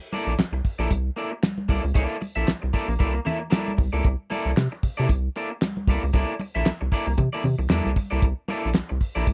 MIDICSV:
0, 0, Header, 1, 5, 480
1, 0, Start_track
1, 0, Tempo, 522648
1, 1795, Time_signature, 4, 2, 24, 8
1, 8571, End_track
2, 0, Start_track
2, 0, Title_t, "Clean electric guitar"
2, 0, Program_c, 0, 27
2, 117, Note_on_c, 0, 58, 78
2, 126, Note_on_c, 0, 64, 73
2, 127, Note_on_c, 0, 69, 81
2, 131, Note_on_c, 0, 74, 94
2, 293, Note_off_c, 0, 58, 0
2, 298, Note_off_c, 0, 64, 0
2, 298, Note_off_c, 0, 69, 0
2, 301, Note_off_c, 0, 74, 0
2, 723, Note_on_c, 0, 74, 81
2, 732, Note_on_c, 0, 69, 83
2, 738, Note_on_c, 0, 64, 78
2, 740, Note_on_c, 0, 58, 65
2, 828, Note_off_c, 0, 58, 0
2, 832, Note_off_c, 0, 64, 0
2, 837, Note_off_c, 0, 69, 0
2, 838, Note_off_c, 0, 74, 0
2, 1069, Note_on_c, 0, 58, 57
2, 1080, Note_on_c, 0, 64, 58
2, 1083, Note_on_c, 0, 69, 60
2, 1086, Note_on_c, 0, 74, 55
2, 1195, Note_off_c, 0, 74, 0
2, 1200, Note_off_c, 0, 69, 0
2, 1209, Note_off_c, 0, 64, 0
2, 1218, Note_off_c, 0, 58, 0
2, 1548, Note_on_c, 0, 58, 60
2, 1557, Note_on_c, 0, 64, 66
2, 1558, Note_on_c, 0, 69, 67
2, 1562, Note_on_c, 0, 74, 72
2, 1675, Note_off_c, 0, 74, 0
2, 1682, Note_off_c, 0, 69, 0
2, 1687, Note_off_c, 0, 64, 0
2, 1697, Note_off_c, 0, 58, 0
2, 1786, Note_on_c, 0, 58, 81
2, 1793, Note_on_c, 0, 64, 79
2, 1798, Note_on_c, 0, 69, 86
2, 1801, Note_on_c, 0, 74, 82
2, 1980, Note_off_c, 0, 58, 0
2, 1983, Note_off_c, 0, 64, 0
2, 1986, Note_off_c, 0, 69, 0
2, 1987, Note_off_c, 0, 74, 0
2, 2165, Note_on_c, 0, 76, 70
2, 2172, Note_on_c, 0, 69, 58
2, 2178, Note_on_c, 0, 64, 58
2, 2181, Note_on_c, 0, 58, 51
2, 2287, Note_off_c, 0, 76, 0
2, 2290, Note_off_c, 0, 69, 0
2, 2294, Note_off_c, 0, 64, 0
2, 2295, Note_off_c, 0, 58, 0
2, 2510, Note_on_c, 0, 58, 87
2, 2513, Note_on_c, 0, 64, 76
2, 2520, Note_on_c, 0, 69, 91
2, 2527, Note_on_c, 0, 74, 86
2, 2639, Note_off_c, 0, 74, 0
2, 2646, Note_off_c, 0, 64, 0
2, 2646, Note_off_c, 0, 69, 0
2, 2691, Note_off_c, 0, 58, 0
2, 2747, Note_on_c, 0, 58, 82
2, 2753, Note_on_c, 0, 64, 76
2, 2758, Note_on_c, 0, 69, 80
2, 2763, Note_on_c, 0, 74, 78
2, 2876, Note_off_c, 0, 74, 0
2, 2881, Note_off_c, 0, 69, 0
2, 2889, Note_off_c, 0, 64, 0
2, 2929, Note_off_c, 0, 58, 0
2, 2986, Note_on_c, 0, 58, 60
2, 2993, Note_on_c, 0, 64, 56
2, 2994, Note_on_c, 0, 69, 61
2, 3000, Note_on_c, 0, 76, 67
2, 3112, Note_off_c, 0, 69, 0
2, 3116, Note_off_c, 0, 76, 0
2, 3119, Note_off_c, 0, 64, 0
2, 3136, Note_off_c, 0, 58, 0
2, 3218, Note_on_c, 0, 58, 94
2, 3228, Note_on_c, 0, 64, 87
2, 3229, Note_on_c, 0, 69, 90
2, 3234, Note_on_c, 0, 74, 87
2, 3405, Note_off_c, 0, 58, 0
2, 3410, Note_off_c, 0, 64, 0
2, 3410, Note_off_c, 0, 69, 0
2, 3412, Note_off_c, 0, 74, 0
2, 3605, Note_on_c, 0, 74, 58
2, 3608, Note_on_c, 0, 69, 60
2, 3616, Note_on_c, 0, 64, 52
2, 3617, Note_on_c, 0, 58, 57
2, 3727, Note_off_c, 0, 74, 0
2, 3729, Note_off_c, 0, 69, 0
2, 3733, Note_off_c, 0, 58, 0
2, 3733, Note_off_c, 0, 64, 0
2, 3951, Note_on_c, 0, 58, 82
2, 3958, Note_on_c, 0, 64, 85
2, 3961, Note_on_c, 0, 69, 86
2, 3968, Note_on_c, 0, 74, 90
2, 4131, Note_off_c, 0, 58, 0
2, 4135, Note_off_c, 0, 64, 0
2, 4136, Note_off_c, 0, 69, 0
2, 4140, Note_off_c, 0, 74, 0
2, 4568, Note_on_c, 0, 74, 83
2, 4574, Note_on_c, 0, 69, 80
2, 4582, Note_on_c, 0, 64, 87
2, 4588, Note_on_c, 0, 58, 72
2, 4671, Note_off_c, 0, 58, 0
2, 4673, Note_off_c, 0, 64, 0
2, 4676, Note_off_c, 0, 69, 0
2, 4680, Note_off_c, 0, 74, 0
2, 4924, Note_on_c, 0, 58, 53
2, 4929, Note_on_c, 0, 64, 52
2, 4934, Note_on_c, 0, 69, 65
2, 4934, Note_on_c, 0, 74, 56
2, 5044, Note_off_c, 0, 74, 0
2, 5053, Note_off_c, 0, 69, 0
2, 5056, Note_off_c, 0, 64, 0
2, 5065, Note_off_c, 0, 58, 0
2, 5405, Note_on_c, 0, 58, 68
2, 5412, Note_on_c, 0, 64, 63
2, 5416, Note_on_c, 0, 69, 57
2, 5419, Note_on_c, 0, 74, 67
2, 5528, Note_off_c, 0, 74, 0
2, 5535, Note_off_c, 0, 69, 0
2, 5543, Note_off_c, 0, 64, 0
2, 5546, Note_off_c, 0, 58, 0
2, 5633, Note_on_c, 0, 58, 80
2, 5638, Note_on_c, 0, 64, 84
2, 5644, Note_on_c, 0, 69, 96
2, 5650, Note_on_c, 0, 74, 88
2, 5812, Note_off_c, 0, 58, 0
2, 5814, Note_off_c, 0, 64, 0
2, 5818, Note_off_c, 0, 69, 0
2, 5821, Note_off_c, 0, 74, 0
2, 6015, Note_on_c, 0, 76, 67
2, 6019, Note_on_c, 0, 69, 59
2, 6023, Note_on_c, 0, 64, 49
2, 6028, Note_on_c, 0, 58, 46
2, 6132, Note_off_c, 0, 76, 0
2, 6134, Note_off_c, 0, 69, 0
2, 6136, Note_off_c, 0, 64, 0
2, 6139, Note_off_c, 0, 58, 0
2, 6356, Note_on_c, 0, 58, 76
2, 6362, Note_on_c, 0, 64, 81
2, 6367, Note_on_c, 0, 69, 81
2, 6372, Note_on_c, 0, 74, 91
2, 6484, Note_off_c, 0, 74, 0
2, 6487, Note_off_c, 0, 69, 0
2, 6493, Note_off_c, 0, 64, 0
2, 6534, Note_off_c, 0, 58, 0
2, 6731, Note_on_c, 0, 74, 82
2, 6739, Note_on_c, 0, 69, 69
2, 6740, Note_on_c, 0, 64, 64
2, 6746, Note_on_c, 0, 58, 66
2, 6825, Note_off_c, 0, 58, 0
2, 6828, Note_off_c, 0, 64, 0
2, 6831, Note_off_c, 0, 69, 0
2, 6836, Note_off_c, 0, 74, 0
2, 7069, Note_on_c, 0, 58, 77
2, 7076, Note_on_c, 0, 64, 85
2, 7080, Note_on_c, 0, 69, 90
2, 7085, Note_on_c, 0, 74, 90
2, 7250, Note_off_c, 0, 58, 0
2, 7253, Note_off_c, 0, 64, 0
2, 7256, Note_off_c, 0, 69, 0
2, 7258, Note_off_c, 0, 74, 0
2, 7444, Note_on_c, 0, 74, 74
2, 7449, Note_on_c, 0, 69, 69
2, 7454, Note_on_c, 0, 64, 58
2, 7460, Note_on_c, 0, 58, 59
2, 7566, Note_off_c, 0, 74, 0
2, 7569, Note_off_c, 0, 69, 0
2, 7571, Note_off_c, 0, 64, 0
2, 7574, Note_off_c, 0, 58, 0
2, 7793, Note_on_c, 0, 58, 80
2, 7801, Note_on_c, 0, 64, 87
2, 7808, Note_on_c, 0, 69, 86
2, 7809, Note_on_c, 0, 74, 87
2, 7971, Note_off_c, 0, 58, 0
2, 7976, Note_off_c, 0, 64, 0
2, 7979, Note_off_c, 0, 69, 0
2, 7980, Note_off_c, 0, 74, 0
2, 8405, Note_on_c, 0, 74, 75
2, 8409, Note_on_c, 0, 69, 81
2, 8414, Note_on_c, 0, 64, 73
2, 8420, Note_on_c, 0, 58, 75
2, 8505, Note_off_c, 0, 58, 0
2, 8509, Note_off_c, 0, 64, 0
2, 8511, Note_off_c, 0, 69, 0
2, 8517, Note_off_c, 0, 74, 0
2, 8571, End_track
3, 0, Start_track
3, 0, Title_t, "Analog synth bass"
3, 0, Program_c, 1, 38
3, 247, Note_on_c, 1, 34, 79
3, 327, Note_off_c, 1, 34, 0
3, 352, Note_on_c, 1, 36, 48
3, 406, Note_off_c, 1, 36, 0
3, 482, Note_on_c, 1, 36, 72
3, 564, Note_off_c, 1, 36, 0
3, 727, Note_on_c, 1, 34, 110
3, 807, Note_off_c, 1, 34, 0
3, 829, Note_on_c, 1, 36, 98
3, 1012, Note_off_c, 1, 36, 0
3, 1550, Note_on_c, 1, 36, 102
3, 1653, Note_off_c, 1, 36, 0
3, 1693, Note_on_c, 1, 37, 100
3, 1771, Note_off_c, 1, 37, 0
3, 1794, Note_on_c, 1, 36, 108
3, 1896, Note_off_c, 1, 36, 0
3, 2171, Note_on_c, 1, 34, 77
3, 2250, Note_off_c, 1, 34, 0
3, 2279, Note_on_c, 1, 36, 50
3, 2332, Note_off_c, 1, 36, 0
3, 2421, Note_on_c, 1, 36, 80
3, 2496, Note_off_c, 1, 36, 0
3, 2649, Note_on_c, 1, 34, 105
3, 2729, Note_off_c, 1, 34, 0
3, 2754, Note_on_c, 1, 36, 82
3, 2935, Note_off_c, 1, 36, 0
3, 3473, Note_on_c, 1, 36, 106
3, 3575, Note_off_c, 1, 36, 0
3, 3613, Note_on_c, 1, 37, 99
3, 3691, Note_off_c, 1, 37, 0
3, 3716, Note_on_c, 1, 36, 119
3, 3817, Note_off_c, 1, 36, 0
3, 4092, Note_on_c, 1, 36, 83
3, 4171, Note_off_c, 1, 36, 0
3, 4199, Note_on_c, 1, 48, 105
3, 4299, Note_off_c, 1, 48, 0
3, 4440, Note_on_c, 1, 48, 49
3, 4492, Note_off_c, 1, 48, 0
3, 4589, Note_on_c, 1, 48, 95
3, 4661, Note_off_c, 1, 48, 0
3, 4678, Note_on_c, 1, 36, 98
3, 4858, Note_off_c, 1, 36, 0
3, 5396, Note_on_c, 1, 36, 94
3, 5497, Note_off_c, 1, 36, 0
3, 5542, Note_on_c, 1, 37, 91
3, 5617, Note_off_c, 1, 37, 0
3, 5638, Note_on_c, 1, 36, 115
3, 5738, Note_off_c, 1, 36, 0
3, 6024, Note_on_c, 1, 34, 97
3, 6098, Note_off_c, 1, 34, 0
3, 6121, Note_on_c, 1, 36, 47
3, 6173, Note_off_c, 1, 36, 0
3, 6262, Note_on_c, 1, 36, 74
3, 6337, Note_off_c, 1, 36, 0
3, 6494, Note_on_c, 1, 36, 84
3, 6572, Note_off_c, 1, 36, 0
3, 6591, Note_on_c, 1, 48, 102
3, 6694, Note_off_c, 1, 48, 0
3, 6841, Note_on_c, 1, 48, 93
3, 6940, Note_off_c, 1, 48, 0
3, 6968, Note_on_c, 1, 36, 76
3, 7048, Note_off_c, 1, 36, 0
3, 7078, Note_on_c, 1, 40, 93
3, 7178, Note_off_c, 1, 40, 0
3, 7220, Note_on_c, 1, 36, 101
3, 7295, Note_off_c, 1, 36, 0
3, 7461, Note_on_c, 1, 36, 100
3, 7536, Note_off_c, 1, 36, 0
3, 7552, Note_on_c, 1, 36, 117
3, 7654, Note_off_c, 1, 36, 0
3, 7948, Note_on_c, 1, 34, 78
3, 8020, Note_off_c, 1, 34, 0
3, 8055, Note_on_c, 1, 36, 53
3, 8104, Note_off_c, 1, 36, 0
3, 8187, Note_on_c, 1, 36, 83
3, 8259, Note_off_c, 1, 36, 0
3, 8416, Note_on_c, 1, 34, 103
3, 8493, Note_off_c, 1, 34, 0
3, 8512, Note_on_c, 1, 36, 86
3, 8571, Note_off_c, 1, 36, 0
3, 8571, End_track
4, 0, Start_track
4, 0, Title_t, "Muted clean electric guitar strokes"
4, 358, Note_on_c, 9, 29, 32
4, 450, Note_off_c, 9, 29, 0
4, 485, Note_on_c, 9, 29, 50
4, 577, Note_off_c, 9, 29, 0
4, 839, Note_on_c, 9, 29, 35
4, 931, Note_off_c, 9, 29, 0
4, 1206, Note_on_c, 9, 29, 48
4, 1298, Note_off_c, 9, 29, 0
4, 1317, Note_on_c, 9, 29, 43
4, 1408, Note_off_c, 9, 29, 0
4, 1686, Note_on_c, 9, 29, 40
4, 1778, Note_off_c, 9, 29, 0
4, 2031, Note_on_c, 9, 29, 42
4, 2123, Note_off_c, 9, 29, 0
4, 2408, Note_on_c, 9, 29, 44
4, 2500, Note_off_c, 9, 29, 0
4, 2650, Note_on_c, 9, 29, 47
4, 2742, Note_off_c, 9, 29, 0
4, 2887, Note_on_c, 9, 29, 36
4, 2979, Note_off_c, 9, 29, 0
4, 3120, Note_on_c, 9, 29, 41
4, 3212, Note_off_c, 9, 29, 0
4, 3464, Note_on_c, 9, 29, 37
4, 3556, Note_off_c, 9, 29, 0
4, 4198, Note_on_c, 9, 29, 40
4, 4290, Note_off_c, 9, 29, 0
4, 4335, Note_on_c, 9, 29, 52
4, 4427, Note_off_c, 9, 29, 0
4, 4682, Note_on_c, 9, 29, 34
4, 4774, Note_off_c, 9, 29, 0
4, 5055, Note_on_c, 9, 29, 42
4, 5147, Note_off_c, 9, 29, 0
4, 5167, Note_on_c, 9, 29, 43
4, 5259, Note_off_c, 9, 29, 0
4, 5539, Note_on_c, 9, 29, 47
4, 5631, Note_off_c, 9, 29, 0
4, 5879, Note_on_c, 9, 29, 42
4, 5970, Note_off_c, 9, 29, 0
4, 6254, Note_on_c, 9, 29, 45
4, 6346, Note_off_c, 9, 29, 0
4, 6495, Note_on_c, 9, 29, 54
4, 6587, Note_off_c, 9, 29, 0
4, 6593, Note_on_c, 9, 29, 51
4, 6684, Note_off_c, 9, 29, 0
4, 6836, Note_on_c, 9, 29, 37
4, 6928, Note_off_c, 9, 29, 0
4, 6967, Note_on_c, 9, 29, 47
4, 7059, Note_off_c, 9, 29, 0
4, 7315, Note_on_c, 9, 29, 38
4, 7407, Note_off_c, 9, 29, 0
4, 8035, Note_on_c, 9, 29, 43
4, 8127, Note_off_c, 9, 29, 0
4, 8167, Note_on_c, 9, 29, 49
4, 8259, Note_off_c, 9, 29, 0
4, 8571, End_track
5, 0, Start_track
5, 0, Title_t, "Drums"
5, 116, Note_on_c, 9, 62, 60
5, 120, Note_on_c, 9, 46, 66
5, 208, Note_off_c, 9, 62, 0
5, 212, Note_off_c, 9, 46, 0
5, 356, Note_on_c, 9, 63, 88
5, 363, Note_on_c, 9, 42, 77
5, 364, Note_on_c, 9, 38, 116
5, 364, Note_on_c, 9, 39, 94
5, 448, Note_off_c, 9, 63, 0
5, 454, Note_off_c, 9, 42, 0
5, 456, Note_off_c, 9, 38, 0
5, 456, Note_off_c, 9, 39, 0
5, 594, Note_on_c, 9, 36, 81
5, 596, Note_on_c, 9, 46, 80
5, 686, Note_off_c, 9, 36, 0
5, 688, Note_off_c, 9, 46, 0
5, 833, Note_on_c, 9, 36, 81
5, 835, Note_on_c, 9, 42, 85
5, 838, Note_on_c, 9, 62, 43
5, 925, Note_off_c, 9, 36, 0
5, 927, Note_off_c, 9, 42, 0
5, 930, Note_off_c, 9, 62, 0
5, 1075, Note_on_c, 9, 42, 72
5, 1167, Note_off_c, 9, 42, 0
5, 1316, Note_on_c, 9, 38, 114
5, 1316, Note_on_c, 9, 39, 82
5, 1316, Note_on_c, 9, 42, 92
5, 1317, Note_on_c, 9, 63, 79
5, 1408, Note_off_c, 9, 38, 0
5, 1408, Note_off_c, 9, 39, 0
5, 1408, Note_off_c, 9, 42, 0
5, 1409, Note_off_c, 9, 63, 0
5, 1448, Note_on_c, 9, 63, 68
5, 1540, Note_off_c, 9, 63, 0
5, 1552, Note_on_c, 9, 36, 90
5, 1559, Note_on_c, 9, 46, 66
5, 1644, Note_off_c, 9, 36, 0
5, 1651, Note_off_c, 9, 46, 0
5, 1794, Note_on_c, 9, 36, 100
5, 1794, Note_on_c, 9, 42, 94
5, 1886, Note_off_c, 9, 36, 0
5, 1886, Note_off_c, 9, 42, 0
5, 2036, Note_on_c, 9, 46, 67
5, 2039, Note_on_c, 9, 62, 53
5, 2128, Note_off_c, 9, 46, 0
5, 2131, Note_off_c, 9, 62, 0
5, 2277, Note_on_c, 9, 42, 85
5, 2278, Note_on_c, 9, 38, 108
5, 2278, Note_on_c, 9, 39, 81
5, 2278, Note_on_c, 9, 63, 93
5, 2368, Note_off_c, 9, 42, 0
5, 2370, Note_off_c, 9, 38, 0
5, 2370, Note_off_c, 9, 39, 0
5, 2370, Note_off_c, 9, 63, 0
5, 2514, Note_on_c, 9, 36, 79
5, 2517, Note_on_c, 9, 46, 83
5, 2606, Note_off_c, 9, 36, 0
5, 2609, Note_off_c, 9, 46, 0
5, 2755, Note_on_c, 9, 36, 83
5, 2755, Note_on_c, 9, 42, 83
5, 2762, Note_on_c, 9, 62, 48
5, 2847, Note_off_c, 9, 36, 0
5, 2847, Note_off_c, 9, 42, 0
5, 2854, Note_off_c, 9, 62, 0
5, 2997, Note_on_c, 9, 42, 70
5, 3001, Note_on_c, 9, 64, 87
5, 3089, Note_off_c, 9, 42, 0
5, 3093, Note_off_c, 9, 64, 0
5, 3236, Note_on_c, 9, 38, 120
5, 3236, Note_on_c, 9, 39, 87
5, 3236, Note_on_c, 9, 42, 101
5, 3243, Note_on_c, 9, 63, 77
5, 3328, Note_off_c, 9, 38, 0
5, 3328, Note_off_c, 9, 39, 0
5, 3328, Note_off_c, 9, 42, 0
5, 3334, Note_off_c, 9, 63, 0
5, 3378, Note_on_c, 9, 63, 73
5, 3470, Note_off_c, 9, 63, 0
5, 3475, Note_on_c, 9, 36, 94
5, 3478, Note_on_c, 9, 46, 71
5, 3567, Note_off_c, 9, 36, 0
5, 3570, Note_off_c, 9, 46, 0
5, 3714, Note_on_c, 9, 42, 82
5, 3716, Note_on_c, 9, 36, 106
5, 3805, Note_off_c, 9, 42, 0
5, 3808, Note_off_c, 9, 36, 0
5, 3958, Note_on_c, 9, 46, 70
5, 3964, Note_on_c, 9, 62, 58
5, 4049, Note_off_c, 9, 46, 0
5, 4056, Note_off_c, 9, 62, 0
5, 4198, Note_on_c, 9, 42, 85
5, 4199, Note_on_c, 9, 38, 102
5, 4199, Note_on_c, 9, 39, 90
5, 4206, Note_on_c, 9, 63, 97
5, 4290, Note_off_c, 9, 42, 0
5, 4291, Note_off_c, 9, 38, 0
5, 4291, Note_off_c, 9, 39, 0
5, 4298, Note_off_c, 9, 63, 0
5, 4438, Note_on_c, 9, 36, 87
5, 4442, Note_on_c, 9, 46, 89
5, 4530, Note_off_c, 9, 36, 0
5, 4534, Note_off_c, 9, 46, 0
5, 4678, Note_on_c, 9, 36, 86
5, 4681, Note_on_c, 9, 42, 78
5, 4686, Note_on_c, 9, 62, 42
5, 4769, Note_off_c, 9, 36, 0
5, 4773, Note_off_c, 9, 42, 0
5, 4778, Note_off_c, 9, 62, 0
5, 4919, Note_on_c, 9, 42, 74
5, 5011, Note_off_c, 9, 42, 0
5, 5160, Note_on_c, 9, 38, 103
5, 5160, Note_on_c, 9, 39, 86
5, 5160, Note_on_c, 9, 42, 92
5, 5164, Note_on_c, 9, 63, 75
5, 5252, Note_off_c, 9, 38, 0
5, 5252, Note_off_c, 9, 39, 0
5, 5252, Note_off_c, 9, 42, 0
5, 5256, Note_off_c, 9, 63, 0
5, 5298, Note_on_c, 9, 63, 71
5, 5390, Note_off_c, 9, 63, 0
5, 5395, Note_on_c, 9, 36, 102
5, 5397, Note_on_c, 9, 46, 72
5, 5487, Note_off_c, 9, 36, 0
5, 5489, Note_off_c, 9, 46, 0
5, 5635, Note_on_c, 9, 42, 91
5, 5636, Note_on_c, 9, 36, 102
5, 5643, Note_on_c, 9, 62, 38
5, 5727, Note_off_c, 9, 42, 0
5, 5728, Note_off_c, 9, 36, 0
5, 5735, Note_off_c, 9, 62, 0
5, 5873, Note_on_c, 9, 62, 54
5, 5877, Note_on_c, 9, 46, 64
5, 5965, Note_off_c, 9, 62, 0
5, 5969, Note_off_c, 9, 46, 0
5, 6115, Note_on_c, 9, 42, 82
5, 6116, Note_on_c, 9, 63, 83
5, 6117, Note_on_c, 9, 38, 112
5, 6117, Note_on_c, 9, 39, 97
5, 6207, Note_off_c, 9, 42, 0
5, 6207, Note_off_c, 9, 63, 0
5, 6208, Note_off_c, 9, 38, 0
5, 6208, Note_off_c, 9, 39, 0
5, 6355, Note_on_c, 9, 36, 93
5, 6358, Note_on_c, 9, 46, 85
5, 6446, Note_off_c, 9, 36, 0
5, 6450, Note_off_c, 9, 46, 0
5, 6591, Note_on_c, 9, 42, 81
5, 6594, Note_on_c, 9, 36, 85
5, 6595, Note_on_c, 9, 62, 49
5, 6595, Note_on_c, 9, 64, 55
5, 6683, Note_off_c, 9, 42, 0
5, 6685, Note_off_c, 9, 36, 0
5, 6687, Note_off_c, 9, 62, 0
5, 6687, Note_off_c, 9, 64, 0
5, 6830, Note_on_c, 9, 46, 62
5, 6834, Note_on_c, 9, 64, 85
5, 6921, Note_off_c, 9, 46, 0
5, 6926, Note_off_c, 9, 64, 0
5, 7070, Note_on_c, 9, 38, 109
5, 7070, Note_on_c, 9, 39, 90
5, 7070, Note_on_c, 9, 42, 96
5, 7073, Note_on_c, 9, 63, 77
5, 7162, Note_off_c, 9, 38, 0
5, 7162, Note_off_c, 9, 39, 0
5, 7162, Note_off_c, 9, 42, 0
5, 7164, Note_off_c, 9, 63, 0
5, 7205, Note_on_c, 9, 63, 70
5, 7297, Note_off_c, 9, 63, 0
5, 7313, Note_on_c, 9, 36, 97
5, 7316, Note_on_c, 9, 46, 66
5, 7404, Note_off_c, 9, 36, 0
5, 7408, Note_off_c, 9, 46, 0
5, 7549, Note_on_c, 9, 62, 37
5, 7550, Note_on_c, 9, 42, 89
5, 7553, Note_on_c, 9, 36, 115
5, 7641, Note_off_c, 9, 62, 0
5, 7642, Note_off_c, 9, 42, 0
5, 7645, Note_off_c, 9, 36, 0
5, 7792, Note_on_c, 9, 62, 64
5, 7795, Note_on_c, 9, 46, 71
5, 7883, Note_off_c, 9, 62, 0
5, 7886, Note_off_c, 9, 46, 0
5, 8029, Note_on_c, 9, 63, 93
5, 8031, Note_on_c, 9, 42, 90
5, 8032, Note_on_c, 9, 38, 102
5, 8032, Note_on_c, 9, 39, 82
5, 8121, Note_off_c, 9, 63, 0
5, 8123, Note_off_c, 9, 42, 0
5, 8124, Note_off_c, 9, 38, 0
5, 8124, Note_off_c, 9, 39, 0
5, 8272, Note_on_c, 9, 36, 80
5, 8276, Note_on_c, 9, 46, 81
5, 8364, Note_off_c, 9, 36, 0
5, 8368, Note_off_c, 9, 46, 0
5, 8512, Note_on_c, 9, 62, 47
5, 8513, Note_on_c, 9, 36, 74
5, 8514, Note_on_c, 9, 42, 81
5, 8571, Note_off_c, 9, 36, 0
5, 8571, Note_off_c, 9, 42, 0
5, 8571, Note_off_c, 9, 62, 0
5, 8571, End_track
0, 0, End_of_file